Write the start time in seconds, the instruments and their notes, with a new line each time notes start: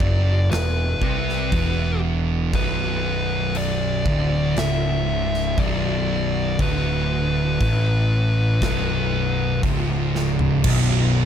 Already playing: lead electric guitar D5
0.00 picked electric bass F#1, distorted electric guitar F#2, kick
0.51 picked electric bass E1, distorted electric guitar E2, lead electric guitar B4, snare, crash
1.02 picked electric bass C2, distorted electric guitar C3, kick
1.29 snare
1.52 picked electric bass E1, distorted electric guitar E2, kick, crash
2.53 picked electric bass B0, distorted electric guitar B1, lead electric guitar B4, kick, crash
3.55 lead electric guitar D5, crash
4.06 picked electric bass D1, distorted electric guitar D2, kick
4.56 picked electric bass C#1, distorted electric guitar C#2, lead electric guitar E5, snare, crash
5.34 snare
5.58 picked electric bass B0, distorted electric guitar B1, lead electric guitar D5, kick, crash
6.59 picked electric bass D1, distorted electric guitar D2, lead electric guitar B4, kick, crash
7.60 picked electric bass A1, distorted electric guitar A2, kick, crash
8.62 picked electric bass B0, distorted electric guitar B1, kick, snare, crash
9.63 picked electric bass C#1, distorted electric guitar C#2, kick, crash
10.15 snare
10.39 floor tom
10.64 picked electric bass B0, distorted electric guitar B1, kick, crash